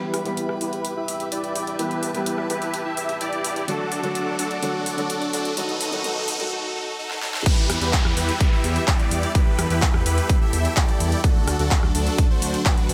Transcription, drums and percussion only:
0.14 cross-stick medium
0.14 open hi-hat loud
0.25 closed hi-hat medium
0.37 closed hi-hat medium
0.49 cross-stick medium
0.61 open hi-hat loud
0.73 closed hi-hat medium
0.85 closed hi-hat medium
1.08 open hi-hat loud
1.20 closed hi-hat medium
1.32 closed hi-hat medium
1.44 closed hi-hat soft
1.55 open hi-hat loud
1.67 closed hi-hat medium
1.79 closed hi-hat medium
1.91 closed hi-hat soft
2.03 open hi-hat loud
2.15 closed hi-hat soft
2.26 closed hi-hat medium
2.38 cross-stick medium
2.50 open hi-hat loud
2.62 closed hi-hat medium
2.74 closed hi-hat medium
2.97 open hi-hat loud
3.09 closed hi-hat medium
3.21 closed hi-hat medium
3.33 closed hi-hat soft
3.44 open hi-hat loud
3.56 closed hi-hat medium
3.68 closed hi-hat medium
3.92 open hi-hat loud
4.04 closed hi-hat soft
4.15 closed hi-hat medium
4.39 open hi-hat loud
4.51 closed hi-hat soft
4.63 closed hi-hat medium
4.86 open hi-hat loud
4.98 closed hi-hat medium
5.10 closed hi-hat medium
5.22 closed hi-hat soft
5.33 open hi-hat loud
5.45 closed hi-hat medium
5.57 closed hi-hat medium
5.69 closed hi-hat soft
5.81 open hi-hat loud
5.92 closed hi-hat soft
6.04 closed hi-hat medium
6.28 open hi-hat loud
6.40 closed hi-hat soft
7.11 snare medium
7.22 snare medium
7.34 snare medium
7.46 kick loud
7.46 closed hi-hat medium
7.46 crash loud
7.70 cross-stick medium
7.70 open hi-hat loud
7.82 closed hi-hat medium
7.93 kick loud
7.93 clap loud
7.93 closed hi-hat medium
8.05 cross-stick medium
8.17 open hi-hat loud
8.29 closed hi-hat medium
8.40 kick loud
8.40 closed hi-hat medium
8.64 open hi-hat loud
8.76 closed hi-hat medium
8.88 kick loud
8.88 clap loud
8.88 closed hi-hat medium
9.00 closed hi-hat soft
9.11 open hi-hat loud
9.23 closed hi-hat medium
9.35 kick loud
9.35 closed hi-hat medium
9.59 cross-stick medium
9.59 open hi-hat loud
9.70 closed hi-hat medium
9.82 kick loud
9.82 clap loud
9.82 closed hi-hat medium
9.94 cross-stick medium
10.06 open hi-hat loud
10.18 closed hi-hat medium
10.29 kick loud
10.29 closed hi-hat medium
10.53 open hi-hat loud
10.65 closed hi-hat medium
10.77 kick loud
10.77 clap loud
10.77 closed hi-hat medium
10.89 closed hi-hat soft
11.00 open hi-hat loud
11.12 closed hi-hat medium
11.24 kick loud
11.24 closed hi-hat medium
11.48 cross-stick medium
11.48 open hi-hat loud
11.59 closed hi-hat medium
11.71 kick loud
11.71 clap loud
11.71 closed hi-hat medium
11.83 cross-stick medium
11.95 open hi-hat loud
12.07 closed hi-hat medium
12.18 kick loud
12.18 closed hi-hat medium
12.42 open hi-hat loud
12.54 closed hi-hat medium
12.66 kick loud
12.66 clap loud
12.66 closed hi-hat medium
12.78 closed hi-hat soft
12.89 open hi-hat loud

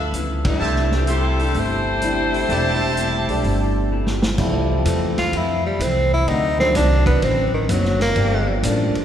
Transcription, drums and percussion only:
0.14 closed hi-hat medium
0.45 kick medium
0.45 ride medium
0.76 snare soft
0.91 snare soft
1.07 closed hi-hat medium
1.39 open hi-hat soft
1.54 open hi-hat soft
2.02 closed hi-hat medium
2.34 open hi-hat soft
2.50 open hi-hat soft
2.97 closed hi-hat medium
3.29 open hi-hat soft
3.44 open hi-hat soft
4.07 snare medium
4.22 snare medium
4.38 kick medium
4.38 crash medium
4.85 hi-hat pedal medium
4.85 ride medium
5.18 snare soft
5.18 ride soft
5.33 ride medium
5.80 hi-hat pedal medium
5.80 ride medium
6.28 ride medium
6.59 snare soft
6.75 snare soft
6.75 hi-hat pedal medium
6.75 ride medium
7.06 kick medium
7.06 ride soft
7.22 ride medium
7.69 hi-hat pedal medium
7.69 ride medium
7.85 snare soft
8.00 snare soft
8.00 ride soft
8.16 ride medium
8.63 hi-hat pedal medium
8.63 ride medium
8.95 ride soft

